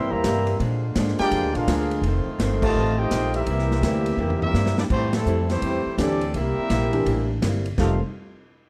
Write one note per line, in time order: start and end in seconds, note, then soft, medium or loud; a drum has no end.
0.00 0.11 G2 medium
0.00 0.13 C3 soft
0.00 0.59 C3 medium
0.00 0.14 G3 medium
0.00 0.59 G3 medium
0.00 0.14 A#3 medium
0.00 2.01 A#3 medium
0.00 0.14 E4 medium
0.00 0.59 E4 medium
0.10 0.23 E2 medium
0.10 0.60 E3 medium
0.10 0.60 G3 medium
0.10 0.60 A#3 loud
0.10 0.60 G4 loud
0.10 0.60 C5 medium
0.10 0.60 E5 medium
0.10 0.60 A#5 loud
0.24 0.59 G2 medium
0.24 0.49 C3 medium
0.24 0.49 G3 medium
0.24 0.49 A#3 medium
0.24 0.49 E4 medium
0.24 snare medium
0.24 hi-hat pedal medium
0.24 ride medium
0.47 ride medium
0.59 0.84 A#2 medium
0.59 0.95 A#2 medium
0.59 2.02 D3 medium
0.59 0.85 F3 medium
0.59 2.02 G#3 medium
0.59 0.85 G#3 medium
0.59 0.85 D4 medium
0.59 3.44 F4 medium
0.59 ride medium
0.96 1.17 G#2 loud
0.96 1.20 A#2 medium
0.96 1.21 F3 medium
0.96 1.21 G#3 medium
0.96 1.21 D4 medium
0.96 snare medium
0.96 hi-hat pedal medium
0.96 ride medium
1.08 snare soft
1.19 1.53 G#3 loud
1.19 1.52 D4 loud
1.19 1.53 F4 loud
1.19 1.52 G4 loud
1.19 1.53 A#4 loud
1.19 1.53 D5 loud
1.19 1.53 G5 loud
1.19 muted upright bass stroke soft
1.19 snare medium
1.19 ride medium
1.31 1.44 F2 medium
1.31 1.56 A#2 medium
1.31 1.57 F3 medium
1.31 1.57 G#3 medium
1.31 1.58 D4 medium
1.31 ride medium
1.44 1.54 D2 medium
1.54 1.66 A#1 medium
1.54 2.03 G#3 medium
1.54 2.03 D4 medium
1.54 2.04 D4 loud
1.54 2.03 F4 medium
1.54 2.04 G#4 medium
1.54 2.04 A#4 medium
1.54 2.04 F5 loud
1.54 ride medium
1.67 2.01 D2 medium
1.67 1.92 A#2 medium
1.67 1.92 F3 medium
1.67 1.92 G#3 medium
1.67 1.93 D4 medium
1.67 snare medium
1.67 hi-hat pedal medium
1.67 ride loud
1.91 ride medium
2.02 2.24 F1 medium
2.02 2.28 F2 medium
2.02 3.46 D#3 medium
2.02 2.29 D#3 medium
2.02 3.46 A3 medium
2.02 4.88 C4 medium
2.02 ride medium
2.06 2.29 A3 medium
2.06 2.30 C4 medium
2.26 muted upright bass stroke soft
2.39 2.74 G1 loud
2.39 2.64 F2 medium
2.39 2.65 D#3 medium
2.39 2.65 A3 medium
2.39 snare medium
2.39 hi-hat pedal medium
2.39 ride medium
2.43 2.66 C4 medium
2.61 2.95 C3 loud
2.61 2.95 D#3 loud
2.61 2.95 A3 loud
2.61 2.97 F4 loud
2.61 2.97 C5 loud
2.61 2.97 D#5 loud
2.61 2.97 A5 loud
2.61 kick loud
2.61 crash loud
2.76 3.10 A1 loud
2.76 3.00 F2 medium
2.76 3.01 D#3 medium
2.76 3.01 A3 medium
2.80 3.02 C4 medium
2.98 3.34 C4 loud
2.98 3.34 D#4 loud
2.98 3.35 F4 loud
2.98 3.34 G4 loud
2.98 3.34 C5 medium
2.98 3.34 D#5 loud
2.98 3.34 G5 loud
3.11 3.46 A#1 medium
3.11 3.36 F2 medium
3.11 3.36 D#3 medium
3.11 3.37 A3 medium
3.11 3.37 C4 medium
3.11 snare medium
3.11 hi-hat pedal medium
3.11 ride medium
3.34 4.40 G3 medium
3.34 4.40 A#3 medium
3.34 4.41 C4 medium
3.34 4.41 E4 medium
3.34 4.41 G4 medium
3.34 4.41 A#4 medium
3.34 4.41 E5 loud
3.34 ride medium
3.46 3.81 C2 loud
3.46 3.72 C3 soft
3.46 4.90 E3 medium
3.46 3.72 G3 medium
3.46 4.90 A#3 medium
3.46 3.73 A#3 medium
3.46 3.73 E4 medium
3.46 4.90 G4 medium
3.46 ride medium
3.59 snare soft
3.71 snare medium
3.81 4.17 D2 loud
3.81 4.08 C3 medium
3.81 4.08 G3 medium
3.81 4.08 A#3 medium
3.81 snare medium
3.81 hi-hat pedal medium
3.81 ride medium
3.86 4.09 E4 medium
4.06 ride medium
4.17 4.53 E2 loud
4.17 4.43 C3 medium
4.17 4.43 G3 medium
4.17 4.44 A#3 medium
4.17 floor tom medium
4.21 4.44 E4 medium
4.30 floor tom medium
4.41 4.75 G3 loud
4.41 4.75 A#3 loud
4.41 4.75 C4 loud
4.41 4.75 E4 loud
4.41 4.76 G4 medium
4.41 4.76 A#4 medium
4.41 4.75 E5 loud
4.41 floor tom medium
4.54 4.89 G2 medium
4.54 4.79 C3 medium
4.54 4.80 G3 medium
4.54 4.80 A#3 medium
4.54 4.80 E4 medium
4.54 snare medium
4.54 hi-hat pedal medium
4.66 snare medium
4.78 4.84 A#3 medium
4.78 4.83 D4 medium
4.78 4.84 E4 medium
4.78 4.84 G4 medium
4.78 4.83 D5 medium
4.78 snare loud
4.90 5.25 A2 medium
4.90 5.15 A2 soft
4.90 5.12 E3 medium
4.90 5.12 G3 medium
4.90 5.16 G3 medium
4.90 5.13 A3 medium
4.90 5.12 C4 medium
4.90 5.16 C4 medium
4.90 5.13 E4 medium
4.90 5.17 E4 medium
4.90 5.13 G4 medium
4.90 5.13 C5 loud
4.90 kick medium
4.90 crash medium
5.13 5.47 C3 medium
5.13 5.47 E3 medium
5.13 5.48 G3 medium
5.13 5.47 A3 medium
5.13 5.48 C4 medium
5.13 5.48 E4 medium
5.13 5.47 A4 medium
5.13 snare medium
5.13 ride medium
5.26 5.61 F2 loud
5.26 5.51 A2 medium
5.26 5.51 G3 medium
5.26 5.52 C4 medium
5.26 5.52 E4 medium
5.26 hi-hat pedal medium
5.49 5.94 E3 medium
5.49 5.95 G3 medium
5.49 5.95 A3 medium
5.49 5.94 C4 medium
5.49 5.95 E4 medium
5.49 5.95 G4 medium
5.49 5.95 C5 loud
5.49 snare medium
5.49 ride medium
5.62 5.84 E2 medium
5.62 5.87 A2 medium
5.62 5.87 G3 soft
5.62 5.88 C4 medium
5.62 5.88 E4 medium
5.62 ride medium
5.86 muted upright bass stroke soft
5.98 6.33 D2 loud
5.98 6.23 A2 medium
5.98 6.34 E3 medium
5.98 6.19 E3 medium
5.98 6.33 G3 medium
5.98 6.23 G3 medium
5.98 6.19 A3 medium
5.98 6.34 C4 medium
5.98 6.24 C4 medium
5.98 6.34 D4 medium
5.98 6.19 D4 medium
5.98 6.24 E4 medium
5.98 6.20 G4 medium
5.98 6.34 G4 medium
5.98 6.35 A4 medium
5.98 6.35 D5 loud
5.98 snare medium
5.98 hi-hat pedal medium
5.98 ride medium
6.21 ride medium
6.34 6.56 C2 medium
6.34 6.58 C3 medium
6.34 7.38 G3 loud
6.34 6.59 G3 medium
6.34 7.38 A#3 loud
6.34 6.60 A#3 medium
6.34 7.39 C4 loud
6.34 7.38 E4 medium
6.34 6.60 E4 medium
6.34 7.39 G4 loud
6.34 7.38 A#4 loud
6.34 7.39 E5 loud
6.34 ride medium
6.58 muted upright bass stroke soft
6.70 7.05 A#1 medium
6.70 6.94 C3 medium
6.70 6.94 G3 medium
6.70 6.95 A#3 medium
6.70 6.95 E4 medium
6.70 snare medium
6.70 hi-hat pedal medium
6.70 ride medium
6.92 7.39 E3 medium
6.92 7.39 A#3 medium
6.92 7.39 D4 medium
6.92 7.40 G4 medium
6.92 ride medium
7.05 7.41 A1 medium
7.05 7.30 C3 medium
7.05 7.31 G3 medium
7.05 7.31 A#3 medium
7.05 7.32 E4 medium
7.05 ride medium
7.42 7.77 G1 medium
7.42 7.66 C3 medium
7.42 7.67 G3 medium
7.42 7.67 A#3 medium
7.42 7.67 E4 medium
7.42 snare medium
7.42 hi-hat pedal medium
7.42 ride medium
7.66 ride medium
7.78 7.99 F1 medium
7.78 8.00 F2 medium
7.78 8.00 C3 medium
7.78 8.00 D#3 medium
7.78 7.97 F3 medium
7.78 7.99 G3 medium
7.78 7.97 A3 medium
7.78 8.00 A3 medium
7.78 7.99 C4 medium
7.78 8.00 D#4 medium
7.78 7.97 D#4 medium
7.78 7.99 F4 medium
7.78 7.97 G4 medium
7.78 8.00 A4 medium
7.78 7.99 C5 medium
7.78 8.00 F5 medium
7.78 kick medium
7.78 snare medium
7.78 crash medium